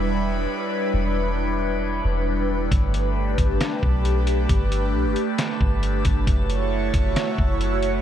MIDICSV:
0, 0, Header, 1, 5, 480
1, 0, Start_track
1, 0, Tempo, 444444
1, 1014, Time_signature, 4, 2, 24, 8
1, 8657, End_track
2, 0, Start_track
2, 0, Title_t, "Synth texture"
2, 0, Program_c, 0, 99
2, 0, Note_on_c, 0, 64, 81
2, 0, Note_on_c, 0, 73, 75
2, 0, Note_on_c, 0, 79, 89
2, 2889, Note_off_c, 0, 79, 0
2, 2890, Note_off_c, 0, 64, 0
2, 2896, Note_off_c, 0, 73, 0
2, 2935, Note_on_c, 0, 67, 79
2, 2937, Note_on_c, 0, 81, 87
2, 2938, Note_on_c, 0, 71, 71
2, 6736, Note_off_c, 0, 67, 0
2, 6738, Note_off_c, 0, 71, 0
2, 6777, Note_on_c, 0, 66, 81
2, 6780, Note_on_c, 0, 76, 73
2, 8657, Note_off_c, 0, 66, 0
2, 8657, Note_off_c, 0, 76, 0
2, 8657, Note_off_c, 0, 81, 0
2, 8657, End_track
3, 0, Start_track
3, 0, Title_t, "Analog synth pad"
3, 0, Program_c, 1, 89
3, 0, Note_on_c, 1, 55, 79
3, 0, Note_on_c, 1, 62, 70
3, 0, Note_on_c, 1, 64, 71
3, 0, Note_on_c, 1, 71, 88
3, 2891, Note_off_c, 1, 55, 0
3, 2891, Note_off_c, 1, 64, 0
3, 2935, Note_on_c, 1, 57, 79
3, 2936, Note_on_c, 1, 67, 71
3, 6731, Note_off_c, 1, 62, 0
3, 6731, Note_off_c, 1, 71, 0
3, 6737, Note_off_c, 1, 67, 0
3, 6777, Note_on_c, 1, 64, 73
3, 6777, Note_on_c, 1, 66, 74
3, 6779, Note_on_c, 1, 73, 88
3, 8657, Note_off_c, 1, 57, 0
3, 8657, Note_off_c, 1, 64, 0
3, 8657, Note_off_c, 1, 66, 0
3, 8657, Note_off_c, 1, 73, 0
3, 8657, End_track
4, 0, Start_track
4, 0, Title_t, "808-style bass"
4, 0, Program_c, 2, 38
4, 0, Note_on_c, 2, 28, 104
4, 505, Note_off_c, 2, 28, 0
4, 1015, Note_on_c, 2, 28, 112
4, 2171, Note_off_c, 2, 28, 0
4, 2212, Note_on_c, 2, 28, 101
4, 2904, Note_off_c, 2, 28, 0
4, 2933, Note_on_c, 2, 31, 112
4, 3625, Note_off_c, 2, 31, 0
4, 3652, Note_on_c, 2, 31, 107
4, 3883, Note_off_c, 2, 31, 0
4, 4134, Note_on_c, 2, 35, 104
4, 4825, Note_off_c, 2, 35, 0
4, 4854, Note_on_c, 2, 31, 110
4, 5334, Note_on_c, 2, 35, 96
4, 5350, Note_off_c, 2, 31, 0
4, 5456, Note_on_c, 2, 31, 97
4, 5472, Note_off_c, 2, 35, 0
4, 5569, Note_off_c, 2, 31, 0
4, 6055, Note_on_c, 2, 31, 104
4, 6516, Note_off_c, 2, 31, 0
4, 6537, Note_on_c, 2, 31, 100
4, 6766, Note_off_c, 2, 31, 0
4, 6774, Note_on_c, 2, 30, 110
4, 7465, Note_off_c, 2, 30, 0
4, 7493, Note_on_c, 2, 30, 103
4, 7724, Note_off_c, 2, 30, 0
4, 7975, Note_on_c, 2, 30, 105
4, 8657, Note_off_c, 2, 30, 0
4, 8657, End_track
5, 0, Start_track
5, 0, Title_t, "Drums"
5, 2933, Note_on_c, 9, 36, 120
5, 2934, Note_on_c, 9, 42, 77
5, 3041, Note_off_c, 9, 36, 0
5, 3042, Note_off_c, 9, 42, 0
5, 3175, Note_on_c, 9, 42, 67
5, 3283, Note_off_c, 9, 42, 0
5, 3652, Note_on_c, 9, 36, 88
5, 3654, Note_on_c, 9, 42, 61
5, 3760, Note_off_c, 9, 36, 0
5, 3762, Note_off_c, 9, 42, 0
5, 3894, Note_on_c, 9, 42, 77
5, 3897, Note_on_c, 9, 38, 111
5, 4002, Note_off_c, 9, 42, 0
5, 4005, Note_off_c, 9, 38, 0
5, 4134, Note_on_c, 9, 36, 94
5, 4242, Note_off_c, 9, 36, 0
5, 4374, Note_on_c, 9, 42, 68
5, 4482, Note_off_c, 9, 42, 0
5, 4612, Note_on_c, 9, 42, 67
5, 4720, Note_off_c, 9, 42, 0
5, 4854, Note_on_c, 9, 36, 120
5, 4854, Note_on_c, 9, 42, 81
5, 4962, Note_off_c, 9, 36, 0
5, 4962, Note_off_c, 9, 42, 0
5, 5096, Note_on_c, 9, 42, 66
5, 5204, Note_off_c, 9, 42, 0
5, 5572, Note_on_c, 9, 42, 63
5, 5680, Note_off_c, 9, 42, 0
5, 5815, Note_on_c, 9, 42, 77
5, 5818, Note_on_c, 9, 38, 112
5, 5923, Note_off_c, 9, 42, 0
5, 5926, Note_off_c, 9, 38, 0
5, 6055, Note_on_c, 9, 36, 95
5, 6163, Note_off_c, 9, 36, 0
5, 6295, Note_on_c, 9, 42, 68
5, 6403, Note_off_c, 9, 42, 0
5, 6532, Note_on_c, 9, 42, 67
5, 6537, Note_on_c, 9, 36, 92
5, 6640, Note_off_c, 9, 42, 0
5, 6645, Note_off_c, 9, 36, 0
5, 6774, Note_on_c, 9, 36, 119
5, 6775, Note_on_c, 9, 42, 75
5, 6882, Note_off_c, 9, 36, 0
5, 6883, Note_off_c, 9, 42, 0
5, 7016, Note_on_c, 9, 42, 66
5, 7124, Note_off_c, 9, 42, 0
5, 7493, Note_on_c, 9, 36, 89
5, 7493, Note_on_c, 9, 42, 62
5, 7601, Note_off_c, 9, 36, 0
5, 7601, Note_off_c, 9, 42, 0
5, 7735, Note_on_c, 9, 42, 76
5, 7738, Note_on_c, 9, 38, 115
5, 7843, Note_off_c, 9, 42, 0
5, 7846, Note_off_c, 9, 38, 0
5, 7975, Note_on_c, 9, 36, 95
5, 8083, Note_off_c, 9, 36, 0
5, 8216, Note_on_c, 9, 42, 69
5, 8324, Note_off_c, 9, 42, 0
5, 8451, Note_on_c, 9, 42, 68
5, 8559, Note_off_c, 9, 42, 0
5, 8657, End_track
0, 0, End_of_file